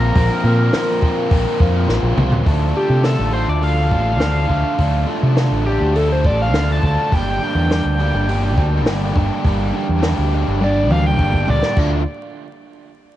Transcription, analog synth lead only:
0.00 1.89 A#4 loud
2.77 3.04 G4 loud
3.06 3.33 A4 loud
3.33 3.47 C5 medium
3.50 3.62 D5 medium
3.64 3.92 F5 medium
3.93 5.05 F5 loud
5.66 5.94 G4 medium
5.96 6.09 A4 medium
6.12 6.25 C5 medium
6.26 6.39 D5 medium
6.42 6.69 F5 medium
6.72 7.12 A5 medium
7.15 8.84 G5 loud
10.64 10.91 D5 medium
10.92 11.04 F5 medium
11.07 11.48 G5 loud
11.50 11.78 D5 loud

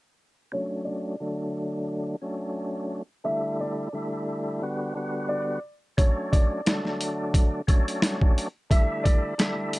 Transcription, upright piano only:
0.53 0.84 C#5 medium
0.85 2.03 D5 medium
3.25 3.56 E5 loud
3.60 5.26 D5 medium
5.29 5.60 D5 medium
5.98 6.29 C#5 loud
6.32 7.50 D5 medium
8.71 9.02 E5 loud
9.04 9.79 D5 medium

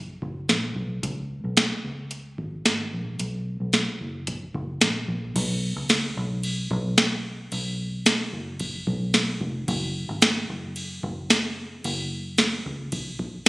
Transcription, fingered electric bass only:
0.00 0.20 F#1 medium
0.22 0.48 F#1 medium
0.49 0.75 A#1 medium
0.76 1.02 B1 medium
1.03 1.42 C#2 medium
1.44 1.70 B1 medium
1.84 2.36 C#2 medium
2.38 2.64 G#1 medium
2.66 2.91 G#1 medium
2.93 3.18 A#1 medium
3.20 3.58 B1 medium
3.60 3.86 B1 medium
4.01 4.52 F#1 medium
4.55 4.80 F#1 medium
4.82 5.07 A#1 medium
5.08 5.34 A#1 medium
5.36 5.74 B1 loud
5.76 6.15 C#2 medium
6.17 6.68 B1 loud
6.71 7.48 B1 loud
7.52 8.29 B1 loud
8.33 8.84 F#1 medium
8.87 9.38 B1 medium
9.41 9.67 F1 loud
9.68 10.07 F#1 loud
10.09 10.47 G#1 medium
10.49 11.01 F#1 medium
11.03 11.80 F#1 medium
11.85 12.62 F#1 loud
12.66 13.19 C#2 medium
13.19 13.49 F#1 medium

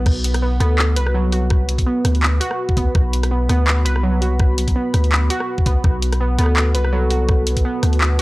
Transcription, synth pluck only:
0.42 0.59 B3 medium
0.60 0.77 B3 loud
0.96 1.14 B4 loud
1.14 1.31 F#3 loud
1.32 1.85 F#4 medium
1.87 2.39 B3 medium
2.40 2.75 F#4 loud
2.77 2.94 B3 medium
3.31 3.48 B3 medium
3.49 3.67 B3 loud
3.85 4.03 B4 loud
4.03 4.20 F#3 loud
4.21 4.74 F#4 medium
4.76 5.28 B3 medium
5.30 5.65 F#4 loud
5.66 5.84 B3 medium
6.20 6.37 B3 medium
6.39 6.56 B3 loud
6.75 6.92 B4 loud
6.93 7.09 F#3 loud
7.11 7.63 F#4 medium
7.65 8.18 B3 medium

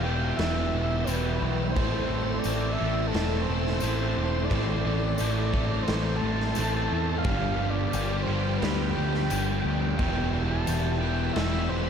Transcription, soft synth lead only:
0.03 0.38 G5 loud
0.37 1.05 E5 loud
1.04 1.57 B4 medium
1.70 2.40 C5 loud
2.39 2.74 D5 loud
2.73 3.08 E5 loud
3.07 3.44 A4 loud
3.42 4.46 C5 loud
4.45 5.82 D5 loud
5.83 6.17 C5 loud
6.16 7.19 A5 loud
7.18 7.71 F5 loud
7.70 8.24 D5 loud
8.23 8.57 C5 loud
8.58 8.91 B4 loud
8.90 9.94 G5 loud
9.94 10.44 G5 loud
10.47 10.96 A5 loud
10.98 11.32 G5 loud
11.33 11.70 E5 loud
11.69 11.90 C5 medium

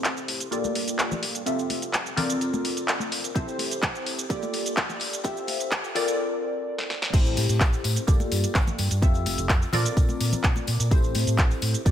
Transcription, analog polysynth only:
0.00 0.47 C4 medium
0.00 0.47 E4 medium
0.00 0.48 G4 medium
0.00 0.48 A4 medium
0.00 0.48 C5 medium
0.51 1.42 A#3 medium
0.51 1.42 F4 medium
0.51 1.42 G4 medium
0.51 1.42 A4 medium
0.51 1.42 D5 medium
1.46 2.12 C4 medium
1.46 2.13 F4 medium
1.46 2.13 G4 medium
1.46 2.13 A4 medium
1.46 2.13 E5 medium
2.16 3.30 C4 medium
2.16 3.31 F4 medium
2.16 3.31 A4 medium
2.16 3.31 A#4 medium
2.16 3.31 D5 loud
3.35 4.25 C4 medium
3.35 4.25 E4 medium
3.35 4.25 G4 medium
3.35 4.26 A4 medium
3.35 4.26 C5 medium
4.29 5.20 A#3 medium
4.29 5.20 F4 medium
4.29 5.20 G4 medium
4.29 5.20 A4 medium
4.29 5.20 D5 medium
5.24 5.90 C4 medium
5.24 5.91 F4 medium
5.24 5.91 G4 medium
5.24 5.91 A4 medium
5.24 5.91 E5 medium
5.95 7.09 C4 loud
5.95 7.09 F4 medium
5.95 7.09 A4 medium
5.95 7.09 A#4 medium
5.95 7.09 D5 loud
7.13 8.03 C4 medium
7.13 8.03 E4 medium
7.13 8.04 G4 medium
7.13 8.04 A4 medium
7.13 8.04 C5 loud
8.07 8.97 A#3 medium
8.07 8.98 F4 medium
8.07 8.98 G4 medium
8.07 8.98 A4 medium
8.07 8.98 D5 medium
9.02 9.68 C4 medium
9.02 9.69 F4 medium
9.02 9.69 G4 medium
9.02 9.69 A4 medium
9.02 9.69 E5 medium
9.72 10.86 C4 loud
9.72 10.87 F4 medium
9.72 10.87 A4 medium
9.72 10.87 A#4 medium
9.72 10.87 D5 loud
10.91 11.81 C4 medium
10.91 11.81 E4 medium
10.91 11.81 G4 medium
10.91 11.82 A4 medium
10.91 11.82 C5 medium
11.85 11.91 A#3 medium
11.85 11.91 F4 medium
11.85 11.91 G4 medium
11.85 11.91 A4 medium
11.85 11.91 D5 medium

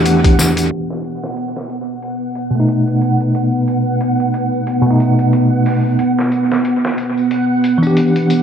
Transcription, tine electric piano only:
0.00 0.68 E3 medium
0.00 0.70 D4 medium
0.00 0.72 G4 medium
2.51 4.79 B2 medium
2.55 4.82 A3 medium
2.60 4.84 D#4 medium
4.81 5.95 B2 medium
4.87 5.98 A3 medium
4.91 6.00 D#4 medium
7.78 8.43 E3 medium
7.83 8.43 D4 medium
7.87 8.43 G4 medium

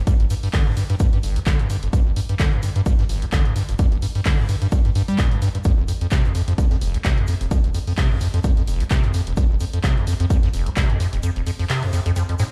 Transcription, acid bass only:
0.07 0.14 G2 medium
0.20 0.26 G1 medium
0.30 0.35 G2 medium
0.43 0.49 G2 medium
0.54 0.68 D3 loud
0.66 0.75 G2 medium
0.77 0.84 G2 medium
0.90 0.95 G2 loud
1.00 1.07 G2 medium
1.13 1.19 G2 medium
1.23 1.38 G1 medium
1.36 1.40 G2 medium
1.46 1.61 D3 loud
1.59 1.68 G2 medium
1.70 1.77 G2 medium
1.83 1.88 G1 medium
1.93 2.00 G2 medium
2.06 2.12 G1 medium
2.16 2.21 G2 medium
2.29 2.35 G2 medium
2.40 2.54 D3 loud
2.53 2.61 G2 medium
2.63 2.70 G2 medium
2.76 2.81 G2 loud
2.86 2.93 G2 medium
2.99 3.05 G2 medium
3.09 3.24 G1 medium
3.22 3.26 G2 medium
3.33 3.47 D3 loud
3.45 3.54 G2 medium
3.56 3.63 G2 medium
3.69 3.74 G1 medium
3.79 3.86 G2 medium
3.92 3.98 G1 medium
4.02 4.07 G2 medium
4.15 4.21 G2 medium
4.26 4.40 D3 loud
4.39 4.47 G2 medium
4.49 4.56 G2 medium
4.62 4.67 G2 loud
4.72 4.79 G2 medium
4.85 4.91 G2 medium
4.95 5.03 G2 loud
5.08 5.20 G3 loud
5.19 5.33 A#2 medium
5.32 5.40 G2 medium
5.42 5.49 G2 loud
5.55 5.58 G2 medium
5.65 5.72 F2 medium
5.78 5.84 F1 medium
5.88 5.93 F2 medium
6.01 6.07 F2 medium
6.12 6.26 C3 loud
6.24 6.33 F2 medium
6.35 6.42 F2 medium
6.48 6.54 F2 loud
6.58 6.65 F2 medium
6.71 6.77 F2 medium
6.81 6.96 F1 medium
6.94 6.98 F2 medium
7.05 7.19 C3 loud
7.18 7.26 F2 medium
7.28 7.35 F2 medium
7.41 7.47 F1 medium
7.51 7.58 F2 medium
7.64 7.70 F1 medium
7.75 7.79 F2 medium
7.87 7.93 F2 medium
7.98 8.12 C3 loud
8.11 8.19 F2 medium
8.21 8.28 F2 medium
8.34 8.40 F2 loud
8.44 8.51 F2 medium
8.57 8.63 F2 medium
8.68 8.82 F1 medium
8.80 8.84 F2 medium
8.91 9.05 C3 loud
9.04 9.12 F2 medium
9.14 9.21 F2 medium
9.27 9.33 F1 medium
9.37 9.44 F2 medium
9.50 9.56 F1 medium
9.61 9.65 F2 medium
9.74 9.79 F2 medium
9.84 9.98 C3 loud
9.97 10.05 F2 medium
10.07 10.14 F2 medium
10.20 10.26 F2 loud
10.30 10.37 F2 medium
10.43 10.49 F2 medium
10.54 10.68 F1 medium
10.66 10.70 F2 medium
10.77 10.91 C3 loud
10.90 10.98 F2 medium
11.00 11.07 F2 medium
11.13 11.19 F1 medium
11.23 11.30 F2 medium
11.36 11.42 F1 medium
11.47 11.51 F2 medium
11.59 11.65 F2 medium
11.70 11.84 C3 loud
11.83 11.91 F2 medium
11.93 12.00 F2 medium
12.06 12.12 F2 loud
12.16 12.23 F2 medium
12.29 12.35 F2 medium
12.39 12.44 G#2 loud

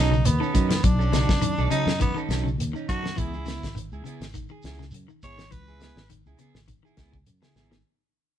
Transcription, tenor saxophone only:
0.00 0.27 D#4 medium
0.26 0.85 B3 medium
0.84 1.70 D4 medium
1.71 1.98 D#4 medium
2.01 2.19 B3 medium
2.89 3.20 F#4 loud
3.18 3.76 E4 medium
5.24 5.53 C#5 loud
5.51 6.10 B4 medium

